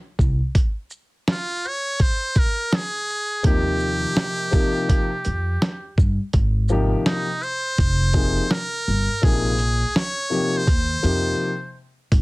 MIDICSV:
0, 0, Header, 1, 5, 480
1, 0, Start_track
1, 0, Tempo, 722892
1, 366, Time_signature, 4, 2, 24, 8
1, 8113, End_track
2, 0, Start_track
2, 0, Title_t, "Muted trumpet"
2, 0, Program_c, 0, 59
2, 872, Note_on_c, 0, 65, 91
2, 1111, Note_on_c, 0, 73, 105
2, 1121, Note_off_c, 0, 65, 0
2, 1342, Note_on_c, 0, 72, 97
2, 1352, Note_off_c, 0, 73, 0
2, 1584, Note_on_c, 0, 70, 101
2, 1594, Note_off_c, 0, 72, 0
2, 1827, Note_on_c, 0, 68, 97
2, 1837, Note_off_c, 0, 70, 0
2, 2296, Note_off_c, 0, 68, 0
2, 2302, Note_on_c, 0, 67, 97
2, 3947, Note_off_c, 0, 67, 0
2, 4699, Note_on_c, 0, 63, 88
2, 4934, Note_on_c, 0, 72, 113
2, 4944, Note_off_c, 0, 63, 0
2, 5656, Note_on_c, 0, 70, 103
2, 5666, Note_off_c, 0, 72, 0
2, 6135, Note_on_c, 0, 68, 103
2, 6145, Note_off_c, 0, 70, 0
2, 6610, Note_off_c, 0, 68, 0
2, 6620, Note_on_c, 0, 73, 108
2, 7022, Note_on_c, 0, 72, 102
2, 7032, Note_off_c, 0, 73, 0
2, 7815, Note_off_c, 0, 72, 0
2, 8113, End_track
3, 0, Start_track
3, 0, Title_t, "Upright piano"
3, 0, Program_c, 1, 0
3, 2278, Note_on_c, 1, 48, 69
3, 2286, Note_on_c, 1, 53, 63
3, 2291, Note_on_c, 1, 58, 60
3, 2296, Note_on_c, 1, 63, 63
3, 2301, Note_on_c, 1, 67, 75
3, 2969, Note_off_c, 1, 48, 0
3, 2973, Note_off_c, 1, 53, 0
3, 2976, Note_off_c, 1, 58, 0
3, 2978, Note_off_c, 1, 63, 0
3, 2980, Note_off_c, 1, 67, 0
3, 2996, Note_on_c, 1, 48, 81
3, 3003, Note_on_c, 1, 53, 78
3, 3008, Note_on_c, 1, 58, 79
3, 3015, Note_on_c, 1, 63, 77
3, 3019, Note_on_c, 1, 67, 86
3, 3367, Note_off_c, 1, 48, 0
3, 3371, Note_off_c, 1, 53, 0
3, 3373, Note_off_c, 1, 58, 0
3, 3377, Note_off_c, 1, 63, 0
3, 3379, Note_off_c, 1, 67, 0
3, 4445, Note_on_c, 1, 48, 73
3, 4449, Note_on_c, 1, 53, 73
3, 4455, Note_on_c, 1, 58, 74
3, 4461, Note_on_c, 1, 63, 71
3, 4464, Note_on_c, 1, 67, 86
3, 4812, Note_off_c, 1, 48, 0
3, 4814, Note_off_c, 1, 53, 0
3, 4817, Note_off_c, 1, 58, 0
3, 4820, Note_off_c, 1, 63, 0
3, 4822, Note_off_c, 1, 67, 0
3, 5400, Note_on_c, 1, 48, 68
3, 5406, Note_on_c, 1, 53, 63
3, 5410, Note_on_c, 1, 58, 66
3, 5418, Note_on_c, 1, 63, 66
3, 5422, Note_on_c, 1, 68, 75
3, 5594, Note_off_c, 1, 48, 0
3, 5597, Note_off_c, 1, 53, 0
3, 5599, Note_off_c, 1, 58, 0
3, 5603, Note_off_c, 1, 63, 0
3, 5605, Note_off_c, 1, 68, 0
3, 6119, Note_on_c, 1, 48, 70
3, 6126, Note_on_c, 1, 53, 67
3, 6130, Note_on_c, 1, 58, 66
3, 6136, Note_on_c, 1, 63, 66
3, 6141, Note_on_c, 1, 68, 80
3, 6313, Note_off_c, 1, 48, 0
3, 6317, Note_off_c, 1, 53, 0
3, 6319, Note_off_c, 1, 58, 0
3, 6322, Note_off_c, 1, 63, 0
3, 6324, Note_off_c, 1, 68, 0
3, 6838, Note_on_c, 1, 48, 66
3, 6845, Note_on_c, 1, 53, 57
3, 6852, Note_on_c, 1, 58, 62
3, 6855, Note_on_c, 1, 63, 59
3, 6859, Note_on_c, 1, 67, 71
3, 7033, Note_off_c, 1, 48, 0
3, 7036, Note_off_c, 1, 53, 0
3, 7040, Note_off_c, 1, 58, 0
3, 7041, Note_off_c, 1, 63, 0
3, 7044, Note_off_c, 1, 67, 0
3, 7320, Note_on_c, 1, 48, 63
3, 7323, Note_on_c, 1, 53, 57
3, 7328, Note_on_c, 1, 58, 59
3, 7337, Note_on_c, 1, 63, 57
3, 7340, Note_on_c, 1, 67, 70
3, 7626, Note_off_c, 1, 48, 0
3, 7628, Note_off_c, 1, 53, 0
3, 7630, Note_off_c, 1, 58, 0
3, 7635, Note_off_c, 1, 63, 0
3, 7636, Note_off_c, 1, 67, 0
3, 8113, End_track
4, 0, Start_track
4, 0, Title_t, "Upright bass"
4, 0, Program_c, 2, 32
4, 126, Note_on_c, 2, 36, 81
4, 256, Note_off_c, 2, 36, 0
4, 2288, Note_on_c, 2, 39, 99
4, 2682, Note_off_c, 2, 39, 0
4, 3493, Note_on_c, 2, 41, 82
4, 3687, Note_off_c, 2, 41, 0
4, 3972, Note_on_c, 2, 43, 85
4, 4099, Note_off_c, 2, 43, 0
4, 4209, Note_on_c, 2, 32, 100
4, 4603, Note_off_c, 2, 32, 0
4, 5168, Note_on_c, 2, 29, 103
4, 5562, Note_off_c, 2, 29, 0
4, 5895, Note_on_c, 2, 31, 87
4, 6021, Note_off_c, 2, 31, 0
4, 6131, Note_on_c, 2, 34, 100
4, 6524, Note_off_c, 2, 34, 0
4, 7089, Note_on_c, 2, 39, 97
4, 7285, Note_off_c, 2, 39, 0
4, 7327, Note_on_c, 2, 41, 85
4, 7524, Note_off_c, 2, 41, 0
4, 8048, Note_on_c, 2, 32, 103
4, 8113, Note_off_c, 2, 32, 0
4, 8113, End_track
5, 0, Start_track
5, 0, Title_t, "Drums"
5, 125, Note_on_c, 9, 36, 96
5, 134, Note_on_c, 9, 82, 46
5, 192, Note_off_c, 9, 36, 0
5, 201, Note_off_c, 9, 82, 0
5, 365, Note_on_c, 9, 36, 109
5, 366, Note_on_c, 9, 42, 87
5, 431, Note_off_c, 9, 36, 0
5, 433, Note_off_c, 9, 42, 0
5, 600, Note_on_c, 9, 82, 55
5, 666, Note_off_c, 9, 82, 0
5, 848, Note_on_c, 9, 38, 121
5, 848, Note_on_c, 9, 42, 63
5, 914, Note_off_c, 9, 38, 0
5, 914, Note_off_c, 9, 42, 0
5, 1090, Note_on_c, 9, 82, 44
5, 1156, Note_off_c, 9, 82, 0
5, 1325, Note_on_c, 9, 42, 92
5, 1326, Note_on_c, 9, 36, 90
5, 1392, Note_off_c, 9, 42, 0
5, 1393, Note_off_c, 9, 36, 0
5, 1563, Note_on_c, 9, 42, 52
5, 1563, Note_on_c, 9, 82, 53
5, 1566, Note_on_c, 9, 36, 91
5, 1629, Note_off_c, 9, 42, 0
5, 1629, Note_off_c, 9, 82, 0
5, 1632, Note_off_c, 9, 36, 0
5, 1810, Note_on_c, 9, 38, 115
5, 1810, Note_on_c, 9, 42, 63
5, 1876, Note_off_c, 9, 38, 0
5, 1877, Note_off_c, 9, 42, 0
5, 2057, Note_on_c, 9, 82, 49
5, 2123, Note_off_c, 9, 82, 0
5, 2285, Note_on_c, 9, 42, 93
5, 2286, Note_on_c, 9, 36, 112
5, 2351, Note_off_c, 9, 42, 0
5, 2353, Note_off_c, 9, 36, 0
5, 2518, Note_on_c, 9, 82, 51
5, 2585, Note_off_c, 9, 82, 0
5, 2766, Note_on_c, 9, 38, 114
5, 2766, Note_on_c, 9, 42, 69
5, 2833, Note_off_c, 9, 38, 0
5, 2833, Note_off_c, 9, 42, 0
5, 3007, Note_on_c, 9, 82, 51
5, 3008, Note_on_c, 9, 36, 92
5, 3074, Note_off_c, 9, 36, 0
5, 3074, Note_off_c, 9, 82, 0
5, 3248, Note_on_c, 9, 36, 96
5, 3251, Note_on_c, 9, 42, 96
5, 3315, Note_off_c, 9, 36, 0
5, 3317, Note_off_c, 9, 42, 0
5, 3484, Note_on_c, 9, 42, 58
5, 3484, Note_on_c, 9, 82, 57
5, 3551, Note_off_c, 9, 42, 0
5, 3551, Note_off_c, 9, 82, 0
5, 3731, Note_on_c, 9, 38, 117
5, 3732, Note_on_c, 9, 42, 61
5, 3798, Note_off_c, 9, 38, 0
5, 3799, Note_off_c, 9, 42, 0
5, 3969, Note_on_c, 9, 36, 101
5, 3978, Note_on_c, 9, 82, 51
5, 4035, Note_off_c, 9, 36, 0
5, 4045, Note_off_c, 9, 82, 0
5, 4205, Note_on_c, 9, 42, 89
5, 4208, Note_on_c, 9, 36, 118
5, 4272, Note_off_c, 9, 42, 0
5, 4274, Note_off_c, 9, 36, 0
5, 4439, Note_on_c, 9, 82, 54
5, 4505, Note_off_c, 9, 82, 0
5, 4688, Note_on_c, 9, 38, 114
5, 4688, Note_on_c, 9, 42, 70
5, 4754, Note_off_c, 9, 38, 0
5, 4754, Note_off_c, 9, 42, 0
5, 4929, Note_on_c, 9, 82, 46
5, 4996, Note_off_c, 9, 82, 0
5, 5168, Note_on_c, 9, 36, 97
5, 5168, Note_on_c, 9, 42, 89
5, 5234, Note_off_c, 9, 42, 0
5, 5235, Note_off_c, 9, 36, 0
5, 5401, Note_on_c, 9, 42, 52
5, 5401, Note_on_c, 9, 82, 55
5, 5405, Note_on_c, 9, 36, 98
5, 5467, Note_off_c, 9, 42, 0
5, 5467, Note_off_c, 9, 82, 0
5, 5472, Note_off_c, 9, 36, 0
5, 5649, Note_on_c, 9, 38, 110
5, 5649, Note_on_c, 9, 42, 63
5, 5715, Note_off_c, 9, 38, 0
5, 5716, Note_off_c, 9, 42, 0
5, 5900, Note_on_c, 9, 82, 50
5, 5967, Note_off_c, 9, 82, 0
5, 6129, Note_on_c, 9, 36, 112
5, 6129, Note_on_c, 9, 42, 93
5, 6195, Note_off_c, 9, 36, 0
5, 6196, Note_off_c, 9, 42, 0
5, 6366, Note_on_c, 9, 42, 54
5, 6366, Note_on_c, 9, 82, 54
5, 6432, Note_off_c, 9, 42, 0
5, 6432, Note_off_c, 9, 82, 0
5, 6613, Note_on_c, 9, 38, 117
5, 6613, Note_on_c, 9, 42, 70
5, 6679, Note_off_c, 9, 38, 0
5, 6679, Note_off_c, 9, 42, 0
5, 6855, Note_on_c, 9, 82, 49
5, 6921, Note_off_c, 9, 82, 0
5, 7088, Note_on_c, 9, 36, 98
5, 7092, Note_on_c, 9, 42, 100
5, 7154, Note_off_c, 9, 36, 0
5, 7158, Note_off_c, 9, 42, 0
5, 7328, Note_on_c, 9, 42, 53
5, 7328, Note_on_c, 9, 82, 54
5, 7395, Note_off_c, 9, 42, 0
5, 7395, Note_off_c, 9, 82, 0
5, 8046, Note_on_c, 9, 36, 107
5, 8047, Note_on_c, 9, 42, 89
5, 8112, Note_off_c, 9, 36, 0
5, 8113, Note_off_c, 9, 42, 0
5, 8113, End_track
0, 0, End_of_file